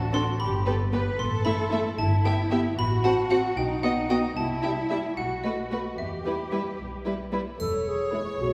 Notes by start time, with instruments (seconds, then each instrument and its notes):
Already playing: double bass section A1, cello section F#4, xylophone A5
0.12 viola section C4, violin section D4 A4, xylophone C6
0.39 double bass section G1, cello section G4, xylophone B5
0.66 viola section B3, violin section G4 B4, cello section A4
0.92 viola section B3, violin section G4 B4, cello section B4
1.19 double bass section A1, cello section A4, xylophone C6
1.45 viola section A3, violin section E4 E5, xylophone B5
1.70 viola section A3, violin section E4 E5
1.98 double bass section G1, cello section E4, xylophone A5
2.25 viola section B3, violin section G4 E5, xylophone G5
2.51 viola section B3, violin section G4 E5
2.78 double bass section A1, cello section F#4, xylophone B5
3.04 viola section C4, violin section F#4 F#5, xylophone A5
3.30 viola section C4, violin section F#4 F#5, xylophone F#5
3.56 double bass section B1, cello section D#4, xylophone G5
3.83 viola section B3, violin section F#4 D#5, xylophone F#5
4.09 viola section B3, violin section F#4 D#5, xylophone G5
4.36 double bass section C2, cello section E4, xylophone A5
4.63 viola section G3, violin section E4 E5, xylophone G5
4.90 viola section G3, violin section E4 E5
5.17 double bass section B1, cello section F#4, xylophone F#5
5.44 viola section A3, violin section F#4 B4, xylophone D#5
5.71 viola section A3, violin section F#4 B4
5.98 double bass section E2, cello section G4, xylophone E5
6.25 viola section G3, violin section E4 B4
6.52 viola section G3, violin section E4 B4
6.79 double bass section B1
7.06 viola section G3, violin section E4 B4
7.32 viola section G3, violin section E4 B4
7.59 double bass section E1, cello section E2, clarinet A4, violin section C#5, triangle
7.87 clarinet G#4
8.13 viola section G#3 E4, violin section B4
8.40 double bass section B1, cello section B2, clarinet F#4